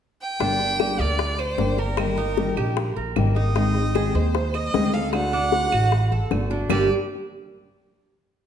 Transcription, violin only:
0.22 G5
1.01 D5
1.40 C5
1.80 A#4
3.37 D#5
4.15 C5
4.55 D#5
4.94 F5
5.14 F#5
6.71 D5

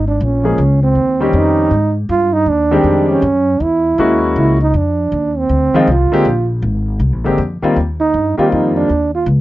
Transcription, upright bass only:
Already playing: G#1
0.21 A#1
0.58 C#2
0.95 D#2
1.33 F2
1.71 G#2
2.09 G2
2.46 D#2
2.84 F2
3.22 F#2
3.60 E2
3.98 D#2
4.36 C#2
4.74 F2
5.12 D#2
5.49 D2
5.73 muted upright bass stroke
5.87 C2
6.11 muted upright bass stroke
6.25 A#1
6.62 G#1
7.00 C2
7.12 A#1
7.26 G#1
7.38 F2
7.62 muted upright bass stroke
7.76 D#2
8.14 G2
8.38 muted upright bass stroke
8.52 F2
8.89 D#2
9.26 C#2

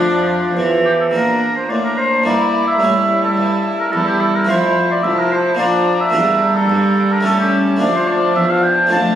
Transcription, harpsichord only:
Already playing: A3 D4
0.00 F3
0.57 E3
1.11 A#2 A#3 D4
1.70 A2
2.24 G2 A#3 E4
2.80 A2 C#4 E4
3.38 G2
3.93 E2
4.45 A3 E4 F4
4.49 F2
5.04 C2
5.55 A#3 D4 F4
5.59 A#2
6.10 A#3 D4 G4
6.14 E2
6.70 G2
7.21 A3 C#4 G4
7.25 A2
7.76 A3 D4 F4
7.81 D2
8.36 E2
8.87 A3 D4 F4
8.91 F2

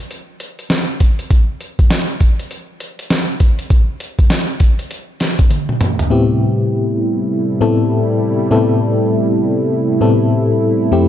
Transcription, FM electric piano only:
6.10 A2 B3 C4 E4 G4
7.61 A2 B3 C4 E4 A4
8.51 A2 B3 C4 E4 A4
10.01 A2 B3 C4 E4 A4
10.91 F2 A3 C4 E4 G4

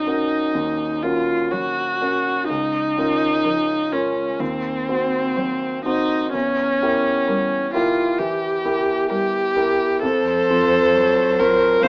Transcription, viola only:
Already playing: D#4
1.03 F4
1.51 F#4
2.49 D#4
3.93 C#4
4.40 C4
5.86 D#4
6.34 C#4
7.74 F4
8.19 G4
9.09 G4
10.02 A4
11.40 A#4
11.84 C5

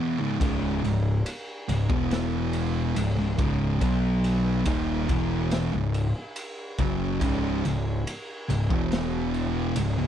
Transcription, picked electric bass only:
0.41 C#1
0.84 C#1
1.69 C#1
1.90 E1
2.97 C#1
3.18 C#1
3.39 C#1
3.81 B1
4.67 D#1
5.09 E1
5.74 C#1
6.79 F#1
7.22 C#1
7.65 C#1
8.50 C#1
8.70 E1
9.77 C#1
9.99 C#1

